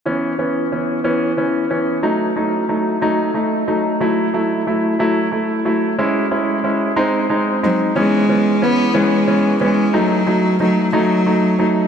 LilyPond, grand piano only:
\new Staff \with { instrumentName = "Grand piano" } { \time 6/8 \key cis \minor \tempo 4. = 61 <e b cis'>8 <e b cis'>8 <e b cis'>8 <e b cis'>8 <e b cis'>8 <e b cis'>8 | <fis a dis'>8 <fis a dis'>8 <fis a dis'>8 <fis a dis'>8 <a dis'>8 <fis a dis'>8 | <fis a e'>8 <fis a e'>8 <fis a e'>8 <fis a e'>8 <a e'>8 <fis a e'>8 | <gis cis' e'>8 <gis cis' e'>8 <gis cis' e'>8 <gis bis dis'>8 <gis bis dis'>8 <gis bis dis'>8 |
<e b cis'>8 <e b cis'>8 <e b cis'>8 <e b cis'>8 <e b cis'>8 <e b cis'>8 | <fis a dis'>8 <fis a dis'>8 <fis a dis'>8 <fis a dis'>8 <fis a dis'>8 <fis a dis'>8 | }